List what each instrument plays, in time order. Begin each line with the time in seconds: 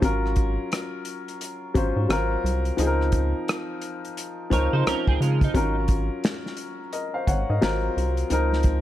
0.02 analog synth bass G#1, upright piano F#3 C#4 F4 A#4, kick, closed hi-hat
0.26 cross-stick
0.36 kick, closed hi-hat
0.72 cross-stick, closed hi-hat
1.05 closed hi-hat
1.28 closed hi-hat
1.41 closed hi-hat
1.74 analog synth bass G#1, upright piano F#3 C#4 F4 C5, kick, closed hi-hat
1.96 analog synth bass G#2
2.09 analog synth bass G#1, upright piano F#3 C4 F4 A#4, cross-stick, closed hi-hat
2.44 analog synth bass C2, closed hi-hat
2.65 closed hi-hat
2.77 analog synth bass C#2, upright piano F3 C4 D#4 G#4, closed hi-hat
2.87 upright piano A#4
3.01 cross-stick
3.12 kick, closed hi-hat
3.48 cross-stick, closed hi-hat
3.82 closed hi-hat
4.05 closed hi-hat
4.17 closed hi-hat
4.50 analog synth bass C#2, upright piano F3 C4 D#4 A#4, clean electric guitar F4 C#5, kick, closed hi-hat
4.73 analog synth bass C#3, clean electric guitar D#4 C5
4.87 analog synth bass C#2, clean electric guitar C#4 A#4, cross-stick, closed hi-hat
5.07 analog synth bass C#2, clean electric guitar C4 G#4, kick
5.21 analog synth bass C#3, clean electric guitar G#3 F4, closed hi-hat
5.41 clean electric guitar D#4, kick, closed hi-hat
5.54 analog synth bass G#1, upright piano F#3 C#4 F4 A#4, kick, closed hi-hat
5.88 kick, closed hi-hat
6.24 finger snap, snare, closed hi-hat
6.46 snare
6.57 closed hi-hat
6.93 upright piano A#4 D#5, closed hi-hat
7.14 upright piano C5 F5
7.27 analog synth bass G#1, upright piano C#5 F#5, kick, closed hi-hat
7.50 analog synth bass G#2, upright piano A#4 D#5
7.61 analog synth bass G#1, upright piano F#3 C4 F4 A#4, finger snap, snare, closed hi-hat
7.97 analog synth bass C2, closed hi-hat
8.17 closed hi-hat
8.30 analog synth bass C#2, upright piano F3 C4 D#4 A#4, closed hi-hat
8.53 snare
8.63 kick, closed hi-hat